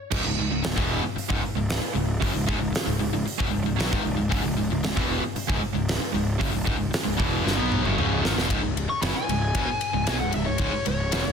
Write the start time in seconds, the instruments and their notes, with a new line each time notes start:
0.11 picked electric bass C#1, overdriven electric guitar C#2 G#2, kick, crash
0.25 picked electric bass C#1, overdriven electric guitar C#2 G#2
0.38 picked electric bass C#1, overdriven electric guitar C#2 G#2
0.51 picked electric bass C#1, overdriven electric guitar C#2 G#2
0.63 picked electric bass C#1, overdriven electric guitar C#2 G#2, snare, open hi-hat
0.76 picked electric bass E1, overdriven electric guitar E2 B2 E3, kick
1.03 muted overdriven electric guitar stroke, muted picked electric bass stroke
1.16 muted overdriven electric guitar stroke, muted picked electric bass stroke, open hi-hat
1.29 picked electric bass C#1, overdriven electric guitar C#2 G#2, kick
1.43 muted overdriven electric guitar stroke, muted picked electric bass stroke
1.56 picked electric bass C#1, overdriven electric guitar C#2 G#2
1.70 snare, open hi-hat
1.82 muted overdriven electric guitar stroke, muted picked electric bass stroke
1.95 picked electric bass C#1, overdriven electric guitar C#2 G#2
2.21 picked electric bass F#1, overdriven electric guitar F#2 C#3, kick, open hi-hat
2.34 picked electric bass C#1, overdriven electric guitar C#2 G#2
2.47 picked electric bass C#1, overdriven electric guitar C#2 G#2, kick
2.60 picked electric bass C#1, overdriven electric guitar C#2 G#2
2.73 muted overdriven electric guitar stroke, muted picked electric bass stroke, snare, open hi-hat
2.86 picked electric bass C#1, overdriven electric guitar C#2 G#2
2.99 picked electric bass C#1, overdriven electric guitar C#2 G#2
3.12 picked electric bass C#1, overdriven electric guitar C#2 G#2
3.25 muted overdriven electric guitar stroke, muted picked electric bass stroke, open hi-hat
3.39 picked electric bass E1, overdriven electric guitar E2 B2, kick
3.52 picked electric bass C#1, overdriven electric guitar C#2 G#2
3.65 picked electric bass C#1, overdriven electric guitar C#2 G#2
3.78 picked electric bass B1, overdriven electric guitar B2 F#3, snare, open hi-hat
3.91 picked electric bass G#1, overdriven electric guitar G#2 D#3, kick
4.04 picked electric bass C#1, overdriven electric guitar C#2 G#2
4.17 picked electric bass C#1, overdriven electric guitar C#2 G#2
4.29 picked electric bass C#1, overdriven electric guitar C#2 G#2, kick, open hi-hat
4.44 picked electric bass C#1, overdriven electric guitar C#2 G#2
4.57 picked electric bass C#1, overdriven electric guitar C#2 G#2
4.70 picked electric bass C#1, overdriven electric guitar C#2 G#2
4.83 picked electric bass C#1, overdriven electric guitar C#2 G#2, snare, open hi-hat
4.95 picked electric bass E1, overdriven electric guitar E2 B2 E3, kick
5.22 muted overdriven electric guitar stroke, muted picked electric bass stroke
5.35 muted picked electric bass stroke, muted overdriven electric guitar stroke, open hi-hat
5.48 picked electric bass C#1, overdriven electric guitar C#2 G#2, kick
5.62 muted overdriven electric guitar stroke, muted picked electric bass stroke
5.74 picked electric bass C#1, overdriven electric guitar C#2 G#2
5.89 snare, open hi-hat
6.01 muted picked electric bass stroke, muted overdriven electric guitar stroke
6.14 picked electric bass C#1, overdriven electric guitar C#2 G#2
6.40 picked electric bass F#1, overdriven electric guitar F#2 C#3, kick, open hi-hat
6.54 picked electric bass C#1, overdriven electric guitar C#2 G#2
6.65 picked electric bass C#1, overdriven electric guitar C#2 G#2, kick
6.78 picked electric bass C#1, overdriven electric guitar C#2 G#2
6.91 muted overdriven electric guitar stroke, muted picked electric bass stroke, snare, open hi-hat
7.03 picked electric bass C#1, overdriven electric guitar C#2 G#2
7.17 picked electric bass E1, overdriven electric guitar E2 B2 E3, kick
7.44 picked electric bass G1, overdriven electric guitar G2 D3, snare
7.57 picked electric bass B1, overdriven electric guitar B2 F#3 B3
7.72 mid tom
7.84 picked electric bass F#1, overdriven electric guitar F#2 C#3, mid tom
7.98 picked electric bass C#1, overdriven electric guitar C#2 G#2 C#3, mid tom
8.22 picked electric bass G#1, overdriven electric guitar G#2 D#3, snare
8.36 picked electric bass E1, overdriven electric guitar E2 B2, snare
8.50 picked electric bass C#1, overdriven electric guitar C#2 G#2, kick, ride
8.62 picked electric bass C#1, overdriven electric guitar C#2 G#2
8.77 ride
8.88 lead electric guitar C#6, muted overdriven electric guitar stroke, muted picked electric bass stroke
9.02 picked electric bass F#1, overdriven electric guitar F#2 C#3, lead electric guitar B5, snare, ride
9.15 lead electric guitar G#5, muted overdriven electric guitar stroke, muted picked electric bass stroke
9.29 picked electric bass C#1, overdriven electric guitar C#2 G#2, ride
9.55 picked electric bass E1, overdriven electric guitar E2 B2, kick, ride
9.68 muted picked electric bass stroke, muted overdriven electric guitar stroke
9.81 ride
9.93 picked electric bass C#1, overdriven electric guitar C#2 G#2
10.07 picked electric bass B1, overdriven electric guitar B2 F#3, snare, ride
10.19 picked electric bass C#1, overdriven electric guitar C#2 G#2, lead electric guitar F#5
10.31 overdriven electric guitar C#2 G#2, lead electric guitar E5, ride
10.35 picked electric bass C#1
10.45 picked electric bass C#1, overdriven electric guitar C#2 G#2, lead electric guitar C#5
10.58 picked electric bass C#1, overdriven electric guitar C#2 G#2, kick, ride
10.71 muted overdriven electric guitar stroke, muted picked electric bass stroke
10.85 picked electric bass C#1, overdriven electric guitar C#2 G#2, lead electric guitar C#5, ride
11.11 picked electric bass E1, overdriven electric guitar E2 B2, snare, ride
11.25 picked electric bass C#1, overdriven electric guitar C#2 G#2